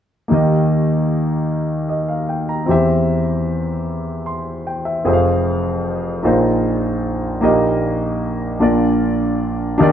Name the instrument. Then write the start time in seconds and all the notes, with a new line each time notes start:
grand piano
0.28 D#2 D#3 A#3 D#4 G4 A#4
0.34 D#5
1.89 D#5
2.08 F5
2.29 G5
2.49 A#5
2.66 E2 E3 C4 E4 G4 C5
2.71 E5
4.26 C6
4.67 G5
4.85 E5
5.04 F1 F2 C4 F4 G#4 C5 E5
5.13 F5
6.23 A#1 A#2 D#4 F4 G#4 A#4 C5
7.41 A#1 A#2 A#3 D#4 G4 A#4 D#5
8.60 A#1 A#2 A#3 D4 F4 A#4 D5
9.78 D#2 D#3 D4 D#4 G4 A#4
9.83 D5